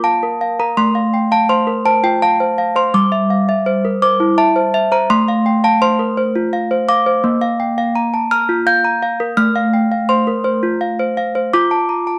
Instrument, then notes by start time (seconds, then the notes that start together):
handbells
Already playing: A#3 F4
0.04 F5 A5
0.23 A#4
0.41 F5
0.60 A#4 A#5
0.77 A3 C6
0.95 F5
1.14 G5
1.32 F5 A5
1.49 C5 C6
1.67 A#4
1.85 C5 A5
2.03 F4 G5
2.22 F5 A5
2.40 C5
2.58 F5
2.76 C5 C6
2.94 G3 D6
3.12 E5
3.30 F5
3.49 E5
3.66 C5
3.85 A#4
4.02 C5 D6
4.20 E4
4.38 E5 A5
4.56 C5
4.74 E5
4.92 C5 A#5
5.10 A3 C6
5.28 F5
5.46 G5
5.64 F5 A5
5.82 C5 C6
5.99 A#4
6.17 C5
6.36 F4
6.53 F5
6.71 C5
6.89 F5 D6
7.06 C5
7.24 A#3
7.41 F5
7.60 G5
7.78 F5
7.95 A#5
8.14 A5
8.31 A#5 F6
8.49 F4
8.67 F5 G6
8.84 A#5
9.03 F5
9.20 A#4
9.37 A3 F6
9.56 F5
9.73 G5
9.92 F5
10.09 C5 C6
10.27 A#4
10.44 C5
10.63 F4
10.81 F5
10.99 C5
11.17 F5
11.35 C5
11.53 F4 D6
11.71 A5
11.89 A#5
12.07 A5